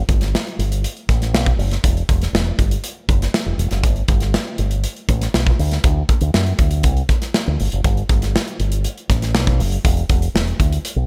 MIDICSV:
0, 0, Header, 1, 3, 480
1, 0, Start_track
1, 0, Tempo, 500417
1, 1764, Time_signature, 4, 2, 24, 8
1, 10614, End_track
2, 0, Start_track
2, 0, Title_t, "Fingered electric bass"
2, 0, Program_c, 0, 33
2, 85, Note_on_c, 0, 31, 101
2, 332, Note_off_c, 0, 31, 0
2, 562, Note_on_c, 0, 31, 95
2, 810, Note_off_c, 0, 31, 0
2, 1043, Note_on_c, 0, 33, 98
2, 1281, Note_off_c, 0, 33, 0
2, 1281, Note_on_c, 0, 35, 89
2, 1447, Note_off_c, 0, 35, 0
2, 1520, Note_on_c, 0, 30, 103
2, 1686, Note_off_c, 0, 30, 0
2, 1765, Note_on_c, 0, 28, 109
2, 1929, Note_off_c, 0, 28, 0
2, 2008, Note_on_c, 0, 28, 92
2, 2171, Note_off_c, 0, 28, 0
2, 2233, Note_on_c, 0, 28, 87
2, 2401, Note_off_c, 0, 28, 0
2, 2480, Note_on_c, 0, 31, 82
2, 2646, Note_off_c, 0, 31, 0
2, 2962, Note_on_c, 0, 30, 84
2, 3127, Note_off_c, 0, 30, 0
2, 3320, Note_on_c, 0, 28, 80
2, 3403, Note_off_c, 0, 28, 0
2, 3430, Note_on_c, 0, 28, 84
2, 3517, Note_off_c, 0, 28, 0
2, 3560, Note_on_c, 0, 30, 83
2, 3679, Note_off_c, 0, 30, 0
2, 3679, Note_on_c, 0, 31, 107
2, 3845, Note_off_c, 0, 31, 0
2, 3920, Note_on_c, 0, 31, 97
2, 4168, Note_off_c, 0, 31, 0
2, 4399, Note_on_c, 0, 31, 87
2, 4647, Note_off_c, 0, 31, 0
2, 4882, Note_on_c, 0, 33, 86
2, 5047, Note_off_c, 0, 33, 0
2, 5121, Note_on_c, 0, 35, 80
2, 5287, Note_off_c, 0, 35, 0
2, 5363, Note_on_c, 0, 38, 92
2, 5528, Note_off_c, 0, 38, 0
2, 5603, Note_on_c, 0, 38, 105
2, 5768, Note_off_c, 0, 38, 0
2, 5958, Note_on_c, 0, 38, 105
2, 6042, Note_off_c, 0, 38, 0
2, 6086, Note_on_c, 0, 42, 88
2, 6250, Note_off_c, 0, 42, 0
2, 6321, Note_on_c, 0, 38, 76
2, 6560, Note_on_c, 0, 36, 103
2, 6575, Note_off_c, 0, 38, 0
2, 6726, Note_off_c, 0, 36, 0
2, 7170, Note_on_c, 0, 38, 81
2, 7250, Note_off_c, 0, 38, 0
2, 7291, Note_on_c, 0, 31, 106
2, 7371, Note_off_c, 0, 31, 0
2, 7411, Note_on_c, 0, 30, 89
2, 7491, Note_off_c, 0, 30, 0
2, 7524, Note_on_c, 0, 31, 108
2, 7689, Note_off_c, 0, 31, 0
2, 7768, Note_on_c, 0, 31, 88
2, 8014, Note_off_c, 0, 31, 0
2, 8244, Note_on_c, 0, 31, 87
2, 8491, Note_off_c, 0, 31, 0
2, 8726, Note_on_c, 0, 33, 85
2, 8965, Note_off_c, 0, 33, 0
2, 8965, Note_on_c, 0, 35, 97
2, 9201, Note_on_c, 0, 30, 96
2, 9216, Note_off_c, 0, 35, 0
2, 9367, Note_off_c, 0, 30, 0
2, 9446, Note_on_c, 0, 28, 119
2, 9610, Note_off_c, 0, 28, 0
2, 9682, Note_on_c, 0, 28, 105
2, 9848, Note_off_c, 0, 28, 0
2, 9922, Note_on_c, 0, 28, 79
2, 10087, Note_off_c, 0, 28, 0
2, 10162, Note_on_c, 0, 38, 78
2, 10327, Note_off_c, 0, 38, 0
2, 10514, Note_on_c, 0, 35, 88
2, 10600, Note_off_c, 0, 35, 0
2, 10614, End_track
3, 0, Start_track
3, 0, Title_t, "Drums"
3, 84, Note_on_c, 9, 36, 100
3, 84, Note_on_c, 9, 42, 63
3, 180, Note_off_c, 9, 36, 0
3, 180, Note_off_c, 9, 42, 0
3, 201, Note_on_c, 9, 42, 54
3, 210, Note_on_c, 9, 38, 37
3, 297, Note_off_c, 9, 42, 0
3, 306, Note_off_c, 9, 38, 0
3, 335, Note_on_c, 9, 38, 121
3, 431, Note_off_c, 9, 38, 0
3, 451, Note_on_c, 9, 42, 35
3, 547, Note_off_c, 9, 42, 0
3, 572, Note_on_c, 9, 42, 76
3, 668, Note_off_c, 9, 42, 0
3, 690, Note_on_c, 9, 42, 61
3, 785, Note_off_c, 9, 42, 0
3, 809, Note_on_c, 9, 42, 90
3, 904, Note_off_c, 9, 42, 0
3, 927, Note_on_c, 9, 42, 34
3, 1023, Note_off_c, 9, 42, 0
3, 1045, Note_on_c, 9, 36, 86
3, 1049, Note_on_c, 9, 42, 64
3, 1052, Note_on_c, 9, 38, 33
3, 1141, Note_off_c, 9, 36, 0
3, 1145, Note_off_c, 9, 42, 0
3, 1148, Note_off_c, 9, 38, 0
3, 1169, Note_on_c, 9, 42, 54
3, 1171, Note_on_c, 9, 38, 32
3, 1265, Note_off_c, 9, 42, 0
3, 1267, Note_off_c, 9, 38, 0
3, 1290, Note_on_c, 9, 38, 127
3, 1386, Note_off_c, 9, 38, 0
3, 1405, Note_on_c, 9, 36, 100
3, 1409, Note_on_c, 9, 42, 32
3, 1500, Note_off_c, 9, 36, 0
3, 1505, Note_off_c, 9, 42, 0
3, 1529, Note_on_c, 9, 46, 60
3, 1625, Note_off_c, 9, 46, 0
3, 1644, Note_on_c, 9, 42, 53
3, 1650, Note_on_c, 9, 38, 35
3, 1740, Note_off_c, 9, 42, 0
3, 1746, Note_off_c, 9, 38, 0
3, 1764, Note_on_c, 9, 36, 104
3, 1765, Note_on_c, 9, 42, 105
3, 1860, Note_off_c, 9, 36, 0
3, 1861, Note_off_c, 9, 42, 0
3, 1889, Note_on_c, 9, 42, 36
3, 1985, Note_off_c, 9, 42, 0
3, 2005, Note_on_c, 9, 36, 101
3, 2008, Note_on_c, 9, 42, 66
3, 2101, Note_off_c, 9, 36, 0
3, 2104, Note_off_c, 9, 42, 0
3, 2125, Note_on_c, 9, 42, 54
3, 2134, Note_on_c, 9, 38, 37
3, 2221, Note_off_c, 9, 42, 0
3, 2230, Note_off_c, 9, 38, 0
3, 2252, Note_on_c, 9, 38, 105
3, 2348, Note_off_c, 9, 38, 0
3, 2482, Note_on_c, 9, 36, 77
3, 2486, Note_on_c, 9, 42, 63
3, 2578, Note_off_c, 9, 36, 0
3, 2582, Note_off_c, 9, 42, 0
3, 2603, Note_on_c, 9, 42, 59
3, 2698, Note_off_c, 9, 42, 0
3, 2721, Note_on_c, 9, 42, 96
3, 2817, Note_off_c, 9, 42, 0
3, 2962, Note_on_c, 9, 36, 86
3, 2963, Note_on_c, 9, 42, 65
3, 3058, Note_off_c, 9, 36, 0
3, 3059, Note_off_c, 9, 42, 0
3, 3090, Note_on_c, 9, 42, 52
3, 3093, Note_on_c, 9, 38, 34
3, 3186, Note_off_c, 9, 42, 0
3, 3189, Note_off_c, 9, 38, 0
3, 3206, Note_on_c, 9, 38, 127
3, 3302, Note_off_c, 9, 38, 0
3, 3446, Note_on_c, 9, 42, 63
3, 3542, Note_off_c, 9, 42, 0
3, 3557, Note_on_c, 9, 42, 51
3, 3563, Note_on_c, 9, 38, 37
3, 3653, Note_off_c, 9, 42, 0
3, 3659, Note_off_c, 9, 38, 0
3, 3678, Note_on_c, 9, 42, 91
3, 3679, Note_on_c, 9, 36, 112
3, 3774, Note_off_c, 9, 42, 0
3, 3775, Note_off_c, 9, 36, 0
3, 3797, Note_on_c, 9, 42, 36
3, 3892, Note_off_c, 9, 42, 0
3, 3915, Note_on_c, 9, 42, 65
3, 3918, Note_on_c, 9, 36, 104
3, 4011, Note_off_c, 9, 42, 0
3, 4014, Note_off_c, 9, 36, 0
3, 4033, Note_on_c, 9, 42, 52
3, 4042, Note_on_c, 9, 38, 33
3, 4129, Note_off_c, 9, 42, 0
3, 4138, Note_off_c, 9, 38, 0
3, 4164, Note_on_c, 9, 38, 109
3, 4260, Note_off_c, 9, 38, 0
3, 4395, Note_on_c, 9, 42, 70
3, 4491, Note_off_c, 9, 42, 0
3, 4515, Note_on_c, 9, 42, 56
3, 4611, Note_off_c, 9, 42, 0
3, 4639, Note_on_c, 9, 42, 104
3, 4735, Note_off_c, 9, 42, 0
3, 4762, Note_on_c, 9, 42, 34
3, 4858, Note_off_c, 9, 42, 0
3, 4879, Note_on_c, 9, 36, 87
3, 4880, Note_on_c, 9, 42, 64
3, 4975, Note_off_c, 9, 36, 0
3, 4976, Note_off_c, 9, 42, 0
3, 5002, Note_on_c, 9, 42, 57
3, 5005, Note_on_c, 9, 38, 30
3, 5098, Note_off_c, 9, 42, 0
3, 5101, Note_off_c, 9, 38, 0
3, 5125, Note_on_c, 9, 38, 127
3, 5220, Note_off_c, 9, 38, 0
3, 5243, Note_on_c, 9, 36, 99
3, 5339, Note_off_c, 9, 36, 0
3, 5366, Note_on_c, 9, 46, 64
3, 5462, Note_off_c, 9, 46, 0
3, 5481, Note_on_c, 9, 42, 48
3, 5487, Note_on_c, 9, 38, 36
3, 5577, Note_off_c, 9, 42, 0
3, 5583, Note_off_c, 9, 38, 0
3, 5600, Note_on_c, 9, 42, 94
3, 5602, Note_on_c, 9, 36, 112
3, 5696, Note_off_c, 9, 42, 0
3, 5698, Note_off_c, 9, 36, 0
3, 5841, Note_on_c, 9, 42, 61
3, 5842, Note_on_c, 9, 36, 103
3, 5937, Note_off_c, 9, 36, 0
3, 5937, Note_off_c, 9, 42, 0
3, 5955, Note_on_c, 9, 42, 53
3, 6050, Note_off_c, 9, 42, 0
3, 6083, Note_on_c, 9, 38, 106
3, 6179, Note_off_c, 9, 38, 0
3, 6201, Note_on_c, 9, 42, 38
3, 6297, Note_off_c, 9, 42, 0
3, 6317, Note_on_c, 9, 42, 66
3, 6319, Note_on_c, 9, 36, 84
3, 6413, Note_off_c, 9, 42, 0
3, 6415, Note_off_c, 9, 36, 0
3, 6434, Note_on_c, 9, 42, 55
3, 6529, Note_off_c, 9, 42, 0
3, 6555, Note_on_c, 9, 42, 89
3, 6561, Note_on_c, 9, 36, 89
3, 6651, Note_off_c, 9, 42, 0
3, 6657, Note_off_c, 9, 36, 0
3, 6683, Note_on_c, 9, 42, 37
3, 6779, Note_off_c, 9, 42, 0
3, 6800, Note_on_c, 9, 42, 71
3, 6801, Note_on_c, 9, 36, 92
3, 6804, Note_on_c, 9, 38, 33
3, 6896, Note_off_c, 9, 42, 0
3, 6897, Note_off_c, 9, 36, 0
3, 6899, Note_off_c, 9, 38, 0
3, 6923, Note_on_c, 9, 42, 57
3, 6925, Note_on_c, 9, 38, 33
3, 7019, Note_off_c, 9, 42, 0
3, 7021, Note_off_c, 9, 38, 0
3, 7044, Note_on_c, 9, 38, 127
3, 7140, Note_off_c, 9, 38, 0
3, 7287, Note_on_c, 9, 46, 69
3, 7383, Note_off_c, 9, 46, 0
3, 7404, Note_on_c, 9, 42, 48
3, 7500, Note_off_c, 9, 42, 0
3, 7524, Note_on_c, 9, 42, 98
3, 7525, Note_on_c, 9, 36, 119
3, 7620, Note_off_c, 9, 42, 0
3, 7621, Note_off_c, 9, 36, 0
3, 7647, Note_on_c, 9, 42, 35
3, 7743, Note_off_c, 9, 42, 0
3, 7763, Note_on_c, 9, 42, 62
3, 7764, Note_on_c, 9, 36, 103
3, 7859, Note_off_c, 9, 42, 0
3, 7860, Note_off_c, 9, 36, 0
3, 7885, Note_on_c, 9, 42, 54
3, 7894, Note_on_c, 9, 38, 34
3, 7981, Note_off_c, 9, 42, 0
3, 7990, Note_off_c, 9, 38, 0
3, 8016, Note_on_c, 9, 38, 106
3, 8112, Note_off_c, 9, 38, 0
3, 8131, Note_on_c, 9, 42, 36
3, 8227, Note_off_c, 9, 42, 0
3, 8246, Note_on_c, 9, 42, 72
3, 8342, Note_off_c, 9, 42, 0
3, 8362, Note_on_c, 9, 42, 64
3, 8458, Note_off_c, 9, 42, 0
3, 8483, Note_on_c, 9, 42, 85
3, 8579, Note_off_c, 9, 42, 0
3, 8609, Note_on_c, 9, 42, 33
3, 8705, Note_off_c, 9, 42, 0
3, 8726, Note_on_c, 9, 36, 87
3, 8726, Note_on_c, 9, 42, 67
3, 8729, Note_on_c, 9, 38, 35
3, 8821, Note_off_c, 9, 36, 0
3, 8822, Note_off_c, 9, 42, 0
3, 8825, Note_off_c, 9, 38, 0
3, 8847, Note_on_c, 9, 42, 56
3, 8849, Note_on_c, 9, 38, 34
3, 8943, Note_off_c, 9, 42, 0
3, 8945, Note_off_c, 9, 38, 0
3, 8965, Note_on_c, 9, 38, 127
3, 9061, Note_off_c, 9, 38, 0
3, 9086, Note_on_c, 9, 36, 104
3, 9091, Note_on_c, 9, 42, 36
3, 9182, Note_off_c, 9, 36, 0
3, 9187, Note_off_c, 9, 42, 0
3, 9210, Note_on_c, 9, 46, 70
3, 9306, Note_off_c, 9, 46, 0
3, 9325, Note_on_c, 9, 42, 53
3, 9421, Note_off_c, 9, 42, 0
3, 9445, Note_on_c, 9, 36, 111
3, 9445, Note_on_c, 9, 42, 103
3, 9541, Note_off_c, 9, 36, 0
3, 9541, Note_off_c, 9, 42, 0
3, 9564, Note_on_c, 9, 42, 38
3, 9660, Note_off_c, 9, 42, 0
3, 9682, Note_on_c, 9, 42, 67
3, 9684, Note_on_c, 9, 36, 100
3, 9778, Note_off_c, 9, 42, 0
3, 9780, Note_off_c, 9, 36, 0
3, 9805, Note_on_c, 9, 42, 56
3, 9901, Note_off_c, 9, 42, 0
3, 9933, Note_on_c, 9, 38, 102
3, 10029, Note_off_c, 9, 38, 0
3, 10047, Note_on_c, 9, 42, 34
3, 10143, Note_off_c, 9, 42, 0
3, 10165, Note_on_c, 9, 36, 77
3, 10166, Note_on_c, 9, 42, 68
3, 10260, Note_off_c, 9, 36, 0
3, 10262, Note_off_c, 9, 42, 0
3, 10288, Note_on_c, 9, 42, 57
3, 10383, Note_off_c, 9, 42, 0
3, 10406, Note_on_c, 9, 42, 96
3, 10502, Note_off_c, 9, 42, 0
3, 10614, End_track
0, 0, End_of_file